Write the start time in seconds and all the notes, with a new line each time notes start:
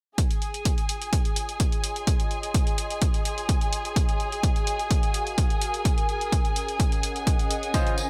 0.18 F4 G#4 G#5, kick, closed hi-hat
0.31 closed hi-hat
0.40 C#5, closed hi-hat
0.54 closed hi-hat
0.65 kick, closed hi-hat
0.72 C6
0.76 D#5, closed hi-hat
0.89 closed hi-hat
1.02 closed hi-hat
1.13 kick, closed hi-hat
1.25 closed hi-hat
1.36 closed hi-hat
1.49 closed hi-hat
1.60 kick, closed hi-hat
1.72 closed hi-hat
1.84 closed hi-hat
1.96 closed hi-hat
2.07 kick, closed hi-hat
2.20 closed hi-hat
2.31 closed hi-hat
2.43 closed hi-hat
2.54 kick, closed hi-hat
2.67 closed hi-hat
2.78 closed hi-hat
2.90 closed hi-hat
3.02 kick, closed hi-hat
3.14 closed hi-hat
3.25 closed hi-hat
3.38 closed hi-hat
3.49 kick, closed hi-hat
3.61 closed hi-hat
3.73 closed hi-hat
3.85 closed hi-hat
3.96 F#4, kick, closed hi-hat
4.09 closed hi-hat
4.19 A#4, closed hi-hat
4.32 closed hi-hat
4.43 kick, closed hi-hat
4.56 closed hi-hat
4.64 F5, closed hi-hat
4.73 G#5
4.79 closed hi-hat
4.91 kick, closed hi-hat
5.03 closed hi-hat
5.14 closed hi-hat
5.27 closed hi-hat
5.38 kick, closed hi-hat
5.50 closed hi-hat
5.61 closed hi-hat
5.74 closed hi-hat
5.85 C#4, kick, closed hi-hat
5.98 closed hi-hat
6.09 closed hi-hat
6.20 D#5, closed hi-hat
6.32 kick, closed hi-hat
6.45 F#5, closed hi-hat
6.56 closed hi-hat
6.68 closed hi-hat
6.80 kick, closed hi-hat
6.92 closed hi-hat
7.03 closed hi-hat
7.16 closed hi-hat
7.27 kick, closed hi-hat
7.39 closed hi-hat
7.51 closed hi-hat
7.63 closed hi-hat
7.74 C#3 C#4 F4 C5 D#5, kick, closed hi-hat, tambourine
7.84 C5, closed hi-hat
7.98 closed hi-hat, tambourine